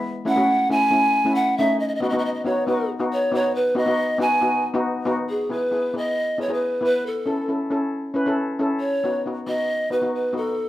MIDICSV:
0, 0, Header, 1, 3, 480
1, 0, Start_track
1, 0, Tempo, 438276
1, 55, Time_signature, 4, 2, 24, 8
1, 11706, End_track
2, 0, Start_track
2, 0, Title_t, "Pan flute"
2, 0, Program_c, 0, 75
2, 307, Note_on_c, 0, 78, 100
2, 778, Note_on_c, 0, 80, 116
2, 795, Note_off_c, 0, 78, 0
2, 1482, Note_on_c, 0, 78, 103
2, 1499, Note_off_c, 0, 80, 0
2, 1727, Note_on_c, 0, 76, 100
2, 1744, Note_off_c, 0, 78, 0
2, 1962, Note_off_c, 0, 76, 0
2, 1969, Note_on_c, 0, 75, 85
2, 2047, Note_off_c, 0, 75, 0
2, 2061, Note_on_c, 0, 75, 64
2, 2134, Note_off_c, 0, 75, 0
2, 2139, Note_on_c, 0, 75, 76
2, 2213, Note_off_c, 0, 75, 0
2, 2225, Note_on_c, 0, 75, 64
2, 2288, Note_off_c, 0, 75, 0
2, 2294, Note_on_c, 0, 75, 80
2, 2373, Note_off_c, 0, 75, 0
2, 2392, Note_on_c, 0, 75, 72
2, 2463, Note_off_c, 0, 75, 0
2, 2468, Note_on_c, 0, 75, 77
2, 2543, Note_off_c, 0, 75, 0
2, 2561, Note_on_c, 0, 75, 72
2, 2688, Note_on_c, 0, 73, 84
2, 2704, Note_off_c, 0, 75, 0
2, 2921, Note_off_c, 0, 73, 0
2, 2928, Note_on_c, 0, 71, 79
2, 3150, Note_off_c, 0, 71, 0
2, 3427, Note_on_c, 0, 73, 91
2, 3640, Note_off_c, 0, 73, 0
2, 3667, Note_on_c, 0, 73, 93
2, 3892, Note_on_c, 0, 71, 84
2, 3908, Note_off_c, 0, 73, 0
2, 4135, Note_on_c, 0, 75, 100
2, 4151, Note_off_c, 0, 71, 0
2, 4611, Note_on_c, 0, 80, 100
2, 4627, Note_off_c, 0, 75, 0
2, 5087, Note_off_c, 0, 80, 0
2, 5800, Note_on_c, 0, 68, 70
2, 6043, Note_on_c, 0, 71, 81
2, 6059, Note_off_c, 0, 68, 0
2, 6523, Note_off_c, 0, 71, 0
2, 6546, Note_on_c, 0, 75, 89
2, 7023, Note_on_c, 0, 73, 78
2, 7039, Note_off_c, 0, 75, 0
2, 7157, Note_on_c, 0, 71, 74
2, 7174, Note_off_c, 0, 73, 0
2, 7492, Note_off_c, 0, 71, 0
2, 7499, Note_on_c, 0, 71, 88
2, 7737, Note_on_c, 0, 69, 71
2, 7753, Note_off_c, 0, 71, 0
2, 8212, Note_off_c, 0, 69, 0
2, 9637, Note_on_c, 0, 73, 88
2, 10091, Note_off_c, 0, 73, 0
2, 10377, Note_on_c, 0, 75, 97
2, 10867, Note_on_c, 0, 71, 81
2, 10883, Note_off_c, 0, 75, 0
2, 11101, Note_off_c, 0, 71, 0
2, 11112, Note_on_c, 0, 71, 83
2, 11355, Note_on_c, 0, 69, 84
2, 11372, Note_off_c, 0, 71, 0
2, 11706, Note_off_c, 0, 69, 0
2, 11706, End_track
3, 0, Start_track
3, 0, Title_t, "Steel pan"
3, 0, Program_c, 1, 114
3, 274, Note_on_c, 1, 57, 70
3, 280, Note_on_c, 1, 61, 66
3, 286, Note_on_c, 1, 64, 86
3, 357, Note_off_c, 1, 57, 0
3, 361, Note_off_c, 1, 61, 0
3, 363, Note_off_c, 1, 64, 0
3, 392, Note_on_c, 1, 57, 76
3, 398, Note_on_c, 1, 61, 74
3, 410, Note_on_c, 1, 66, 85
3, 619, Note_off_c, 1, 57, 0
3, 623, Note_off_c, 1, 61, 0
3, 628, Note_off_c, 1, 66, 0
3, 760, Note_on_c, 1, 57, 65
3, 767, Note_on_c, 1, 61, 63
3, 773, Note_on_c, 1, 64, 77
3, 912, Note_off_c, 1, 57, 0
3, 916, Note_off_c, 1, 61, 0
3, 918, Note_off_c, 1, 64, 0
3, 992, Note_on_c, 1, 57, 68
3, 998, Note_on_c, 1, 61, 67
3, 1009, Note_on_c, 1, 64, 74
3, 1218, Note_off_c, 1, 57, 0
3, 1221, Note_off_c, 1, 61, 0
3, 1227, Note_off_c, 1, 64, 0
3, 1362, Note_on_c, 1, 57, 70
3, 1374, Note_on_c, 1, 61, 72
3, 1380, Note_on_c, 1, 64, 87
3, 1583, Note_off_c, 1, 57, 0
3, 1589, Note_off_c, 1, 61, 0
3, 1592, Note_off_c, 1, 64, 0
3, 1736, Note_on_c, 1, 57, 79
3, 1744, Note_on_c, 1, 61, 73
3, 1752, Note_on_c, 1, 63, 83
3, 1973, Note_off_c, 1, 57, 0
3, 1977, Note_off_c, 1, 61, 0
3, 1981, Note_off_c, 1, 63, 0
3, 2194, Note_on_c, 1, 59, 74
3, 2208, Note_on_c, 1, 63, 63
3, 2218, Note_on_c, 1, 66, 89
3, 2275, Note_off_c, 1, 59, 0
3, 2282, Note_off_c, 1, 63, 0
3, 2287, Note_off_c, 1, 66, 0
3, 2326, Note_on_c, 1, 59, 77
3, 2332, Note_on_c, 1, 63, 66
3, 2336, Note_on_c, 1, 66, 89
3, 2544, Note_off_c, 1, 59, 0
3, 2547, Note_off_c, 1, 63, 0
3, 2549, Note_off_c, 1, 66, 0
3, 2679, Note_on_c, 1, 59, 69
3, 2689, Note_on_c, 1, 63, 72
3, 2700, Note_on_c, 1, 66, 77
3, 2829, Note_off_c, 1, 59, 0
3, 2834, Note_off_c, 1, 63, 0
3, 2839, Note_off_c, 1, 66, 0
3, 2923, Note_on_c, 1, 59, 72
3, 2930, Note_on_c, 1, 63, 70
3, 2938, Note_on_c, 1, 66, 82
3, 3141, Note_off_c, 1, 59, 0
3, 3144, Note_off_c, 1, 63, 0
3, 3148, Note_off_c, 1, 66, 0
3, 3279, Note_on_c, 1, 59, 74
3, 3284, Note_on_c, 1, 63, 70
3, 3290, Note_on_c, 1, 66, 82
3, 3499, Note_off_c, 1, 59, 0
3, 3501, Note_off_c, 1, 63, 0
3, 3505, Note_off_c, 1, 66, 0
3, 3633, Note_on_c, 1, 59, 80
3, 3641, Note_on_c, 1, 63, 72
3, 3654, Note_on_c, 1, 66, 87
3, 3927, Note_off_c, 1, 59, 0
3, 3931, Note_off_c, 1, 63, 0
3, 3938, Note_off_c, 1, 66, 0
3, 4107, Note_on_c, 1, 59, 82
3, 4110, Note_on_c, 1, 63, 65
3, 4122, Note_on_c, 1, 66, 85
3, 4189, Note_off_c, 1, 59, 0
3, 4191, Note_off_c, 1, 63, 0
3, 4196, Note_off_c, 1, 66, 0
3, 4227, Note_on_c, 1, 59, 75
3, 4236, Note_on_c, 1, 63, 68
3, 4243, Note_on_c, 1, 66, 84
3, 4452, Note_off_c, 1, 59, 0
3, 4456, Note_off_c, 1, 63, 0
3, 4460, Note_off_c, 1, 66, 0
3, 4582, Note_on_c, 1, 59, 78
3, 4590, Note_on_c, 1, 63, 72
3, 4603, Note_on_c, 1, 66, 78
3, 4738, Note_off_c, 1, 59, 0
3, 4742, Note_off_c, 1, 63, 0
3, 4749, Note_off_c, 1, 66, 0
3, 4832, Note_on_c, 1, 59, 76
3, 4839, Note_on_c, 1, 63, 71
3, 4846, Note_on_c, 1, 66, 82
3, 5054, Note_off_c, 1, 59, 0
3, 5057, Note_off_c, 1, 63, 0
3, 5061, Note_off_c, 1, 66, 0
3, 5188, Note_on_c, 1, 59, 92
3, 5194, Note_on_c, 1, 63, 89
3, 5200, Note_on_c, 1, 66, 94
3, 5412, Note_off_c, 1, 59, 0
3, 5415, Note_off_c, 1, 63, 0
3, 5418, Note_off_c, 1, 66, 0
3, 5534, Note_on_c, 1, 59, 93
3, 5536, Note_on_c, 1, 63, 87
3, 5550, Note_on_c, 1, 66, 104
3, 5788, Note_off_c, 1, 59, 0
3, 5790, Note_off_c, 1, 63, 0
3, 5796, Note_off_c, 1, 66, 0
3, 6018, Note_on_c, 1, 59, 59
3, 6028, Note_on_c, 1, 64, 60
3, 6037, Note_on_c, 1, 68, 69
3, 6176, Note_off_c, 1, 59, 0
3, 6181, Note_off_c, 1, 64, 0
3, 6186, Note_off_c, 1, 68, 0
3, 6257, Note_on_c, 1, 59, 55
3, 6265, Note_on_c, 1, 64, 53
3, 6275, Note_on_c, 1, 68, 62
3, 6416, Note_off_c, 1, 59, 0
3, 6420, Note_off_c, 1, 64, 0
3, 6425, Note_off_c, 1, 68, 0
3, 6499, Note_on_c, 1, 59, 60
3, 6504, Note_on_c, 1, 64, 51
3, 6511, Note_on_c, 1, 68, 60
3, 6801, Note_off_c, 1, 59, 0
3, 6803, Note_off_c, 1, 64, 0
3, 6806, Note_off_c, 1, 68, 0
3, 6989, Note_on_c, 1, 59, 56
3, 6990, Note_on_c, 1, 64, 53
3, 7004, Note_on_c, 1, 68, 59
3, 7070, Note_off_c, 1, 59, 0
3, 7071, Note_off_c, 1, 64, 0
3, 7077, Note_off_c, 1, 68, 0
3, 7100, Note_on_c, 1, 59, 57
3, 7108, Note_on_c, 1, 64, 58
3, 7115, Note_on_c, 1, 68, 74
3, 7329, Note_off_c, 1, 59, 0
3, 7333, Note_off_c, 1, 64, 0
3, 7337, Note_off_c, 1, 68, 0
3, 7457, Note_on_c, 1, 59, 69
3, 7464, Note_on_c, 1, 64, 62
3, 7476, Note_on_c, 1, 71, 73
3, 7711, Note_off_c, 1, 59, 0
3, 7715, Note_off_c, 1, 64, 0
3, 7721, Note_off_c, 1, 71, 0
3, 7947, Note_on_c, 1, 61, 62
3, 7956, Note_on_c, 1, 64, 57
3, 7964, Note_on_c, 1, 69, 70
3, 8103, Note_off_c, 1, 61, 0
3, 8107, Note_off_c, 1, 64, 0
3, 8111, Note_off_c, 1, 69, 0
3, 8195, Note_on_c, 1, 61, 59
3, 8203, Note_on_c, 1, 64, 58
3, 8210, Note_on_c, 1, 69, 62
3, 8347, Note_off_c, 1, 61, 0
3, 8351, Note_off_c, 1, 64, 0
3, 8355, Note_off_c, 1, 69, 0
3, 8439, Note_on_c, 1, 61, 73
3, 8446, Note_on_c, 1, 64, 59
3, 8452, Note_on_c, 1, 69, 76
3, 8733, Note_off_c, 1, 61, 0
3, 8736, Note_off_c, 1, 64, 0
3, 8739, Note_off_c, 1, 69, 0
3, 8914, Note_on_c, 1, 61, 72
3, 8925, Note_on_c, 1, 64, 64
3, 8936, Note_on_c, 1, 71, 80
3, 8995, Note_off_c, 1, 61, 0
3, 9000, Note_off_c, 1, 64, 0
3, 9006, Note_off_c, 1, 71, 0
3, 9046, Note_on_c, 1, 61, 78
3, 9055, Note_on_c, 1, 64, 69
3, 9065, Note_on_c, 1, 69, 83
3, 9265, Note_off_c, 1, 61, 0
3, 9270, Note_off_c, 1, 64, 0
3, 9274, Note_off_c, 1, 69, 0
3, 9411, Note_on_c, 1, 61, 79
3, 9414, Note_on_c, 1, 64, 71
3, 9426, Note_on_c, 1, 69, 80
3, 9651, Note_off_c, 1, 61, 0
3, 9653, Note_off_c, 1, 64, 0
3, 9659, Note_off_c, 1, 69, 0
3, 9898, Note_on_c, 1, 59, 66
3, 9906, Note_on_c, 1, 63, 55
3, 9911, Note_on_c, 1, 66, 73
3, 10041, Note_off_c, 1, 59, 0
3, 10045, Note_off_c, 1, 63, 0
3, 10047, Note_off_c, 1, 66, 0
3, 10136, Note_on_c, 1, 59, 54
3, 10145, Note_on_c, 1, 63, 53
3, 10155, Note_on_c, 1, 66, 66
3, 10280, Note_off_c, 1, 59, 0
3, 10285, Note_off_c, 1, 63, 0
3, 10289, Note_off_c, 1, 66, 0
3, 10368, Note_on_c, 1, 59, 64
3, 10375, Note_on_c, 1, 63, 54
3, 10386, Note_on_c, 1, 66, 65
3, 10660, Note_off_c, 1, 59, 0
3, 10664, Note_off_c, 1, 63, 0
3, 10669, Note_off_c, 1, 66, 0
3, 10846, Note_on_c, 1, 59, 57
3, 10853, Note_on_c, 1, 63, 58
3, 10867, Note_on_c, 1, 66, 61
3, 10924, Note_off_c, 1, 59, 0
3, 10927, Note_off_c, 1, 63, 0
3, 10934, Note_off_c, 1, 66, 0
3, 10969, Note_on_c, 1, 59, 65
3, 10977, Note_on_c, 1, 63, 60
3, 10981, Note_on_c, 1, 66, 66
3, 11189, Note_off_c, 1, 59, 0
3, 11193, Note_off_c, 1, 63, 0
3, 11195, Note_off_c, 1, 66, 0
3, 11311, Note_on_c, 1, 59, 67
3, 11315, Note_on_c, 1, 63, 60
3, 11323, Note_on_c, 1, 66, 69
3, 11564, Note_off_c, 1, 59, 0
3, 11566, Note_off_c, 1, 63, 0
3, 11570, Note_off_c, 1, 66, 0
3, 11706, End_track
0, 0, End_of_file